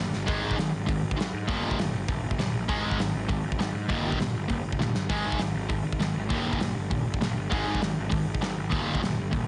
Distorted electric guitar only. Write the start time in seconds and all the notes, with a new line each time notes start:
Already playing: D#2 A#2
0.26 G#2 D#3 G#3
0.56 G#2 D#3
0.86 G#2 D#3
1.16 G#2 D#3
1.47 D#2 A#2 D#3
1.78 D#2 A#2
2.09 D#2 A#2
2.39 D#2 A#2
2.68 G#2 D#3 G#3
2.99 G#2 D#3
3.28 G#2 D#3
3.59 G#2 D#3
3.88 D#2 A#2 D#3
4.19 D#2 A#2
4.48 D#2 A#2
4.79 D#2 A#2
5.09 G#2 D#3 G#3
5.38 G#2 D#3
5.69 G#2 D#3
6.00 G#2 D#3
6.29 D#2 A#2 D#3
6.60 D#2 A#2
6.90 D#2 A#2
7.21 D#2 A#2
7.50 G#2 D#3 G#3
7.81 G#2 D#3
8.10 G#2 D#3
8.41 G#2 D#3
8.70 D#2 A#2 D#3
9.01 D#2 A#2
9.31 D#2 A#2